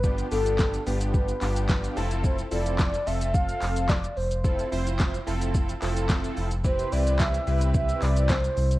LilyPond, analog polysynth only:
\new Staff \with { instrumentName = "Analog polysynth" } { \time 4/4 \key f \lydian \tempo 4 = 109 <b d' f' g'>8 <b d' f' g'>4 <b d' f' g'>4 <b d' f' g'>4 <c' e' f' a'>8~ | <c' e' f' a'>8 <c' e' f' a'>4 <c' f' a'>4. r4 | <c' e' f' a'>8 <c' e' f' c''>4 <c' e' f' a'>4 <c' e' f' a'>4 r8 | <c' e' g' b'>8 <c' e' g' b'>4 <c' e' g' b'>4. r4 | }